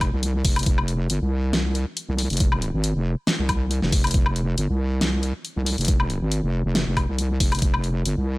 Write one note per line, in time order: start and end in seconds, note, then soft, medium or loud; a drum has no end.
0.00 0.11 F1 loud
0.00 kick medium
0.00 closed hi-hat medium
0.00 low woodblock soft
0.13 0.43 C2 loud
0.23 closed hi-hat medium
0.45 0.65 F1 loud
0.45 kick loud
0.45 open hi-hat loud
0.56 closed hi-hat soft
0.56 low woodblock medium
0.59 closed hi-hat medium
0.63 closed hi-hat medium
0.66 1.08 F1 loud
0.66 kick loud
0.66 closed hi-hat medium
0.78 low woodblock soft
0.88 closed hi-hat medium
1.10 1.20 G1 loud
1.10 closed hi-hat medium
1.21 1.85 C2 loud
1.53 snare loud
1.53 closed hi-hat medium
1.75 closed hi-hat medium
1.97 closed hi-hat medium
2.08 2.28 C2 loud
2.18 open hi-hat medium
2.30 2.72 F1 loud
2.30 closed hi-hat medium
2.33 closed hi-hat medium
2.37 closed hi-hat medium
2.40 kick loud
2.40 closed hi-hat medium
2.52 low woodblock medium
2.62 closed hi-hat medium
2.74 2.94 G#1 medium
2.84 closed hi-hat medium
2.95 3.15 F1 loud
3.27 snare loud
3.27 closed hi-hat medium
3.39 3.81 C2 loud
3.49 kick medium
3.49 closed hi-hat medium
3.49 low woodblock soft
3.71 closed hi-hat medium
3.82 4.13 F1 loud
3.82 snare soft
3.92 kick loud
3.92 open hi-hat medium
4.04 closed hi-hat soft
4.04 low woodblock soft
4.07 closed hi-hat medium
4.11 4.56 F1 loud
4.11 kick loud
4.11 closed hi-hat medium
4.14 closed hi-hat medium
4.26 low woodblock medium
4.36 closed hi-hat medium
4.58 4.67 G1 loud
4.58 closed hi-hat medium
4.69 5.33 C2 loud
5.01 snare loud
5.01 closed hi-hat medium
5.23 closed hi-hat medium
5.45 closed hi-hat medium
5.56 5.76 C2 medium
5.66 open hi-hat medium
5.78 6.20 F1 loud
5.78 closed hi-hat soft
5.81 closed hi-hat medium
5.85 closed hi-hat medium
5.88 kick loud
5.88 closed hi-hat medium
6.00 low woodblock medium
6.10 closed hi-hat medium
6.21 6.41 G#1 medium
6.32 closed hi-hat medium
6.43 6.63 F1 loud
6.65 6.85 F1 loud
6.75 snare loud
6.75 closed hi-hat medium
6.87 7.07 F1 loud
6.97 kick medium
6.97 closed hi-hat soft
6.97 low woodblock medium
7.08 7.39 C2 loud
7.18 closed hi-hat medium
7.40 7.60 F1 loud
7.40 kick loud
7.40 open hi-hat loud
7.52 closed hi-hat soft
7.52 low woodblock medium
7.55 closed hi-hat medium
7.59 8.04 F1 loud
7.59 closed hi-hat medium
7.62 kick loud
7.62 closed hi-hat medium
7.74 low woodblock medium
7.84 closed hi-hat medium
8.05 8.15 G1 loud
8.05 closed hi-hat medium
8.17 8.38 C2 loud